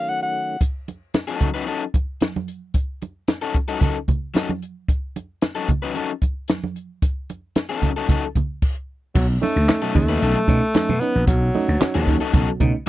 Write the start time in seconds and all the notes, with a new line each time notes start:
Already playing: D#3 F#3 A3 C#4 F5
0.09 F#5
0.23 F#5
0.61 kick, closed hi-hat, muted conga
0.88 closed hi-hat, muted conga
1.14 snare, closed hi-hat, high conga
1.27 F#3 C#4 D#4 A4, closed hi-hat
1.41 kick, closed hi-hat, low conga
1.54 F#3 C#4 D#4 B4, closed hi-hat
1.66 F#3 C#4 D#4 A4, closed hi-hat
1.94 kick, closed hi-hat, muted conga
2.21 snare, closed hi-hat, high conga
2.36 high conga
2.48 closed hi-hat
2.74 kick, closed hi-hat, muted conga
3.02 closed hi-hat, muted conga
3.28 snare, closed hi-hat, high conga
3.42 F#3 C#4 D#4 A4
3.55 kick, closed hi-hat
3.68 F#3 C#4 D#4 A4, closed hi-hat
3.80 F#3 C#4 D#4 A4, kick, closed hi-hat, muted conga, low conga
4.08 kick, closed hi-hat, muted conga, low conga
4.34 F#3 C#4 D#4 A4, snare, closed hi-hat, high conga
4.49 high conga
4.62 closed hi-hat
4.88 kick, closed hi-hat, muted conga
5.16 closed hi-hat, muted conga
5.42 snare, closed hi-hat, high conga
5.55 F#3 C#4 D#4 A4, closed hi-hat
5.68 kick, closed hi-hat, low conga
5.82 F#3 C#4 D#4 B4, closed hi-hat
5.95 F#3 C#4 D#4 A4, closed hi-hat, muted conga
6.22 kick, closed hi-hat, muted conga
6.48 snare, closed hi-hat, high conga
6.64 high conga
6.76 closed hi-hat
7.02 kick, closed hi-hat, muted conga
7.30 closed hi-hat, muted conga
7.56 snare, closed hi-hat, high conga
7.69 F#3 C#4 D#4 A4, closed hi-hat
7.82 kick, closed hi-hat, low conga
7.96 F#3 C#4 D#4 A4, closed hi-hat
8.09 F#3 C#4 D#4 A4, kick, closed hi-hat, muted conga, low conga
8.35 kick, closed hi-hat, muted conga, low conga
8.62 kick, crash
9.15 B1 B2 F#3, kick, crash, muted conga
9.29 C#4 D#4
9.42 A3 C#4 D#4, open hi-hat, muted conga
9.56 D2
9.68 C#4 D#4, snare, clap, closed hi-hat, high conga
9.82 B2 F#3 C#4 D#4 A4, closed hi-hat
9.94 D#2 A3 C#4 D#4, kick, open hi-hat, low conga
10.09 F#3 C#4 D#4 B4, closed hi-hat
10.22 B1 F#3 C#4 D#4 A4, closed hi-hat, muted conga
10.35 B2 F#3
10.48 B2 A3 C#4 D#4, kick, closed hi-hat, muted conga
10.74 C#4 D#4, snare, clap, closed hi-hat, high conga
10.89 B2 F#3, high conga
11.00 B3 C#4 D#4, closed hi-hat
11.15 A#1
11.27 B1 B2 F#3, kick, closed hi-hat, muted conga
11.42 C#4 D#4
11.54 A3 C#4 D#4, open hi-hat, muted conga
11.68 D2
11.81 C#4 D#4, muted slap bass stroke, snare, clap, closed hi-hat, high conga
11.94 D#2 B2 F#3 C#4 D#4 A4, closed hi-hat
12.07 C#4 D#4, kick, open hi-hat
12.21 F#3 C#4 D#4 A4, closed hi-hat
12.33 B1 F#3 C#4 D#4 A4, kick, closed hi-hat, low conga
12.48 B2 F#3
12.60 B2 A3 C#4 D#4, kick, closed hi-hat, muted conga, low conga